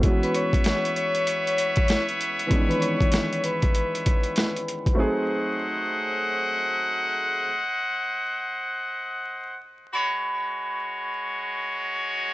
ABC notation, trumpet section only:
X:1
M:4/4
L:1/8
Q:"Swing 16ths" 1/4=97
K:E
V:1 name="Trumpet section"
[Bce]8- | [Bce]6- [Bce] z | [^Bdf]8- | [^Bdf]6- [Bdf] z |
[G,Fc]8 |]